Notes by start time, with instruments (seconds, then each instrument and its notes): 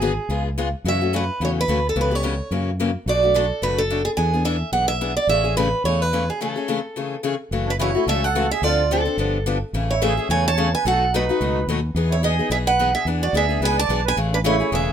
Already playing: fretless electric bass G#1, steel-string acoustic guitar G#4
0.01 steel-string acoustic guitar D3 F#3 B3 F#4 G#4
0.29 fretless electric bass C#2, steel-string acoustic guitar C#3 G#3 B3 F4 G#4
0.58 steel-string acoustic guitar C#3 G#3 B3 F4 G#4
0.84 fretless electric bass F#2, steel-string acoustic guitar C#3 E3 A3 C#4 F#4
0.88 steel-string acoustic guitar E5
1.01 steel-string acoustic guitar A3 C#4 F#4
1.13 steel-string acoustic guitar C#3 E3 A3 C#4 F#4 B4
1.40 fretless electric bass E2, steel-string acoustic guitar C#3 E3 A3 C#4 F#4
1.45 steel-string acoustic guitar C#5
1.61 steel-string acoustic guitar B4
1.68 fretless electric bass D2, steel-string acoustic guitar C#3 E3 A3 C#4 F#4
1.89 steel-string acoustic guitar A4
1.96 fretless electric bass C#2, steel-string acoustic guitar C#3 E3 B3 C#4 G4
2.01 steel-string acoustic guitar B4
2.11 steel-string acoustic guitar B3 C#4 G4
2.15 steel-string acoustic guitar C#5
2.23 steel-string acoustic guitar C#3 E3 B3 C#4 G4
2.51 fretless electric bass F#2, steel-string acoustic guitar C#3 E3 A#3 C#4 F#4
2.80 steel-string acoustic guitar C#3 E3 A#3 C#4 F#4
3.06 fretless electric bass B1, steel-string acoustic guitar B2 F#3 A3 D4 F#4 D5
3.23 steel-string acoustic guitar A3 D4 F#4
3.34 steel-string acoustic guitar B2 F#3 A3 D4 F#4 A4
3.62 fretless electric bass F#1, steel-string acoustic guitar B2 F#3 A3 D4 F#4 B4
3.78 steel-string acoustic guitar A4
3.90 steel-string acoustic guitar B2 F#3 A3 D4 F#4
4.05 steel-string acoustic guitar G#4
4.17 fretless electric bass E2, steel-string acoustic guitar E3 B3 D4 G#4 G#5
4.34 steel-string acoustic guitar B3 D4 G#4
4.45 steel-string acoustic guitar E3 B3 D4 G#4 E5
4.72 fretless electric bass B1, steel-string acoustic guitar E3 B3 D4 G#4 F#5
4.88 steel-string acoustic guitar E5
5.01 steel-string acoustic guitar E3 B3 D4 G#4
5.17 steel-string acoustic guitar D5
5.27 fretless electric bass A1, steel-string acoustic guitar C#3 E3 A3 C#4 G#4 E5
5.44 steel-string acoustic guitar A3 C#4 G#4
5.57 steel-string acoustic guitar C#3 E3 A3 C#4 G#4 B4
5.84 fretless electric bass E2, steel-string acoustic guitar C#3 E3 A3 C#4 G#4 C#5
6.02 steel-string acoustic guitar B4
6.13 steel-string acoustic guitar C#3 E3 A3 C#4 G#4
6.30 steel-string acoustic guitar G#4
6.41 steel-string acoustic guitar C#3 E3 A3 C#4 G#4 A4
6.56 steel-string acoustic guitar A3 C#4 G#4
6.68 steel-string acoustic guitar C#3 E3 A3 C#4 G#4
6.96 steel-string acoustic guitar C#3 E3 A3 C#4 G#4
7.23 steel-string acoustic guitar C#3 E3 A3 C#4 G#4
7.51 fretless electric bass F#1, steel-string acoustic guitar C#3 E3 A3 C#4 F#4
7.66 accordion D4
7.70 steel-string acoustic guitar B4
7.78 steel-string acoustic guitar C#3 E3 A3 C#4 F#4 C#5, accordion E4
7.95 steel-string acoustic guitar A3 C#4 F#4
8.07 fretless electric bass C#2, steel-string acoustic guitar C#3 E3 A3 C#4 F#4 E5, accordion A4
8.23 accordion A4, steel-string acoustic guitar F#5
8.35 steel-string acoustic guitar C#3 E3 A3 C#4 F#4
8.51 accordion G#4, steel-string acoustic guitar E5
8.62 fretless electric bass D2, steel-string acoustic guitar D3 F3 C4 D4 A4 D5, accordion F4
8.91 steel-string acoustic guitar D3 F3 C4 D4 A4, accordion C4
9.05 steel-string acoustic guitar C4 D4 A4
9.17 fretless electric bass G1, steel-string acoustic guitar D3 F3 B3 D4 G4
9.46 steel-string acoustic guitar D3 F3 B3 D4 G4
9.73 fretless electric bass A1, steel-string acoustic guitar C#3 E3 A3 C#4 G#4
9.90 accordion E4, steel-string acoustic guitar C#5
10.02 steel-string acoustic guitar C#3 E3 A3 C#4 G#4 E5, accordion G#4
10.17 steel-string acoustic guitar A3 C#4 G#4
10.29 fretless electric bass E2, steel-string acoustic guitar C#3 E3 A3 C#4 G#4 G#5, accordion C#5
10.47 accordion C#5, steel-string acoustic guitar A5
10.57 steel-string acoustic guitar C#3 E3 A3 C#4 G#4
10.73 accordion B4, steel-string acoustic guitar G#5
10.85 fretless electric bass B1, steel-string acoustic guitar B2 F#3 A3 D#4 F#4 F#5, accordion A4
11.12 steel-string acoustic guitar B2 F#3 A3 D#4 F#4 B4, accordion D#4
11.29 steel-string acoustic guitar A3 D#4 F#4
11.40 fretless electric bass C#2, steel-string acoustic guitar B2 F#3 A3 D#4 F#4
11.67 fretless electric bass D#2, steel-string acoustic guitar B2 F#3 A3 D#4 F#4
11.95 fretless electric bass E2, steel-string acoustic guitar E3 B3 D#4 G#4
12.10 accordion E4, steel-string acoustic guitar C#5
12.23 steel-string acoustic guitar E3 B3 D#4 G#4 D#5, accordion G#4
12.39 steel-string acoustic guitar B3 D#4 G#4
12.50 fretless electric bass B1, steel-string acoustic guitar E3 B3 D#4 G#4 E5, accordion G#4
12.66 accordion B4, steel-string acoustic guitar F#5
12.79 steel-string acoustic guitar E3 B3 D#4 G#4
12.95 accordion G#4, steel-string acoustic guitar E5
13.05 fretless electric bass E2, steel-string acoustic guitar E3 B3 D4 G#4
13.23 accordion F#4, steel-string acoustic guitar D5
13.33 fretless electric bass D2, steel-string acoustic guitar E3 B3 D4 G#4, accordion G#4
13.37 steel-string acoustic guitar E5
13.49 steel-string acoustic guitar B3 D4 G#4
13.60 fretless electric bass C#2, steel-string acoustic guitar E3 B3 D4 G#4, accordion B4
13.65 steel-string acoustic guitar G#5
13.78 accordion D5, steel-string acoustic guitar A5
13.89 fretless electric bass B1, steel-string acoustic guitar E3 B3 D4 G#4
14.05 accordion B4, steel-string acoustic guitar G#5
14.17 fretless electric bass A1, steel-string acoustic guitar C#3 E3 A3 C#4 G#4
14.33 accordion D4, steel-string acoustic guitar B4
14.44 steel-string acoustic guitar C#3 E3 A3 C#4 G#4 C#5, accordion E4
14.60 steel-string acoustic guitar A3 C#4 G#4
14.72 fretless electric bass E1, steel-string acoustic guitar C#3 E3 A3 C#4 G#4 E5, accordion G#4